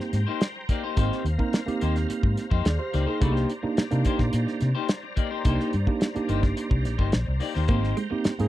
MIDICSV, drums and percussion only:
0, 0, Header, 1, 2, 480
1, 0, Start_track
1, 0, Tempo, 559963
1, 833, Time_signature, 4, 2, 24, 8
1, 7269, End_track
2, 0, Start_track
2, 0, Title_t, "Drums"
2, 1, Note_on_c, 9, 38, 33
2, 87, Note_off_c, 9, 38, 0
2, 111, Note_on_c, 9, 42, 65
2, 113, Note_on_c, 9, 38, 33
2, 197, Note_off_c, 9, 42, 0
2, 199, Note_off_c, 9, 38, 0
2, 350, Note_on_c, 9, 42, 73
2, 356, Note_on_c, 9, 38, 96
2, 436, Note_off_c, 9, 42, 0
2, 442, Note_off_c, 9, 38, 0
2, 589, Note_on_c, 9, 42, 54
2, 591, Note_on_c, 9, 36, 87
2, 675, Note_off_c, 9, 42, 0
2, 677, Note_off_c, 9, 36, 0
2, 830, Note_on_c, 9, 42, 92
2, 833, Note_on_c, 9, 36, 104
2, 916, Note_off_c, 9, 42, 0
2, 919, Note_off_c, 9, 36, 0
2, 961, Note_on_c, 9, 38, 36
2, 1046, Note_off_c, 9, 38, 0
2, 1078, Note_on_c, 9, 42, 71
2, 1163, Note_off_c, 9, 42, 0
2, 1193, Note_on_c, 9, 36, 71
2, 1279, Note_off_c, 9, 36, 0
2, 1312, Note_on_c, 9, 42, 91
2, 1320, Note_on_c, 9, 38, 97
2, 1398, Note_off_c, 9, 42, 0
2, 1406, Note_off_c, 9, 38, 0
2, 1442, Note_on_c, 9, 42, 56
2, 1528, Note_off_c, 9, 42, 0
2, 1555, Note_on_c, 9, 42, 67
2, 1641, Note_off_c, 9, 42, 0
2, 1680, Note_on_c, 9, 42, 48
2, 1682, Note_on_c, 9, 38, 36
2, 1766, Note_off_c, 9, 42, 0
2, 1767, Note_off_c, 9, 38, 0
2, 1799, Note_on_c, 9, 42, 121
2, 1885, Note_off_c, 9, 42, 0
2, 1915, Note_on_c, 9, 36, 96
2, 2001, Note_off_c, 9, 36, 0
2, 2035, Note_on_c, 9, 42, 69
2, 2037, Note_on_c, 9, 38, 35
2, 2121, Note_off_c, 9, 42, 0
2, 2122, Note_off_c, 9, 38, 0
2, 2155, Note_on_c, 9, 36, 89
2, 2241, Note_off_c, 9, 36, 0
2, 2274, Note_on_c, 9, 42, 84
2, 2280, Note_on_c, 9, 38, 101
2, 2360, Note_off_c, 9, 42, 0
2, 2366, Note_off_c, 9, 38, 0
2, 2517, Note_on_c, 9, 42, 59
2, 2524, Note_on_c, 9, 38, 32
2, 2603, Note_off_c, 9, 42, 0
2, 2610, Note_off_c, 9, 38, 0
2, 2756, Note_on_c, 9, 42, 87
2, 2757, Note_on_c, 9, 36, 114
2, 2842, Note_off_c, 9, 36, 0
2, 2842, Note_off_c, 9, 42, 0
2, 2881, Note_on_c, 9, 38, 36
2, 2967, Note_off_c, 9, 38, 0
2, 2997, Note_on_c, 9, 42, 74
2, 3082, Note_off_c, 9, 42, 0
2, 3233, Note_on_c, 9, 42, 91
2, 3241, Note_on_c, 9, 38, 105
2, 3319, Note_off_c, 9, 42, 0
2, 3326, Note_off_c, 9, 38, 0
2, 3355, Note_on_c, 9, 42, 60
2, 3441, Note_off_c, 9, 42, 0
2, 3469, Note_on_c, 9, 42, 67
2, 3476, Note_on_c, 9, 36, 88
2, 3554, Note_off_c, 9, 42, 0
2, 3562, Note_off_c, 9, 36, 0
2, 3591, Note_on_c, 9, 38, 32
2, 3594, Note_on_c, 9, 36, 85
2, 3677, Note_off_c, 9, 38, 0
2, 3680, Note_off_c, 9, 36, 0
2, 3710, Note_on_c, 9, 42, 120
2, 3796, Note_off_c, 9, 42, 0
2, 3835, Note_on_c, 9, 38, 36
2, 3921, Note_off_c, 9, 38, 0
2, 3948, Note_on_c, 9, 42, 66
2, 3950, Note_on_c, 9, 38, 38
2, 4034, Note_off_c, 9, 42, 0
2, 4035, Note_off_c, 9, 38, 0
2, 4188, Note_on_c, 9, 42, 83
2, 4195, Note_on_c, 9, 38, 99
2, 4274, Note_off_c, 9, 42, 0
2, 4280, Note_off_c, 9, 38, 0
2, 4429, Note_on_c, 9, 42, 58
2, 4432, Note_on_c, 9, 36, 82
2, 4514, Note_off_c, 9, 42, 0
2, 4518, Note_off_c, 9, 36, 0
2, 4670, Note_on_c, 9, 42, 95
2, 4673, Note_on_c, 9, 36, 111
2, 4755, Note_off_c, 9, 42, 0
2, 4759, Note_off_c, 9, 36, 0
2, 4799, Note_on_c, 9, 38, 40
2, 4885, Note_off_c, 9, 38, 0
2, 4912, Note_on_c, 9, 42, 72
2, 4998, Note_off_c, 9, 42, 0
2, 5032, Note_on_c, 9, 36, 74
2, 5118, Note_off_c, 9, 36, 0
2, 5151, Note_on_c, 9, 42, 86
2, 5159, Note_on_c, 9, 38, 95
2, 5237, Note_off_c, 9, 42, 0
2, 5244, Note_off_c, 9, 38, 0
2, 5279, Note_on_c, 9, 42, 64
2, 5364, Note_off_c, 9, 42, 0
2, 5390, Note_on_c, 9, 42, 65
2, 5476, Note_off_c, 9, 42, 0
2, 5513, Note_on_c, 9, 36, 88
2, 5513, Note_on_c, 9, 38, 33
2, 5599, Note_off_c, 9, 36, 0
2, 5599, Note_off_c, 9, 38, 0
2, 5632, Note_on_c, 9, 42, 109
2, 5718, Note_off_c, 9, 42, 0
2, 5751, Note_on_c, 9, 36, 91
2, 5837, Note_off_c, 9, 36, 0
2, 5873, Note_on_c, 9, 42, 62
2, 5875, Note_on_c, 9, 38, 33
2, 5959, Note_off_c, 9, 42, 0
2, 5961, Note_off_c, 9, 38, 0
2, 5991, Note_on_c, 9, 36, 83
2, 6076, Note_off_c, 9, 36, 0
2, 6106, Note_on_c, 9, 42, 82
2, 6112, Note_on_c, 9, 38, 106
2, 6192, Note_off_c, 9, 42, 0
2, 6198, Note_off_c, 9, 38, 0
2, 6346, Note_on_c, 9, 46, 61
2, 6353, Note_on_c, 9, 38, 31
2, 6432, Note_off_c, 9, 46, 0
2, 6439, Note_off_c, 9, 38, 0
2, 6473, Note_on_c, 9, 38, 32
2, 6559, Note_off_c, 9, 38, 0
2, 6585, Note_on_c, 9, 42, 87
2, 6591, Note_on_c, 9, 36, 117
2, 6671, Note_off_c, 9, 42, 0
2, 6677, Note_off_c, 9, 36, 0
2, 6718, Note_on_c, 9, 38, 33
2, 6803, Note_off_c, 9, 38, 0
2, 6832, Note_on_c, 9, 42, 66
2, 6918, Note_off_c, 9, 42, 0
2, 7066, Note_on_c, 9, 42, 94
2, 7074, Note_on_c, 9, 38, 94
2, 7152, Note_off_c, 9, 42, 0
2, 7160, Note_off_c, 9, 38, 0
2, 7196, Note_on_c, 9, 42, 62
2, 7269, Note_off_c, 9, 42, 0
2, 7269, End_track
0, 0, End_of_file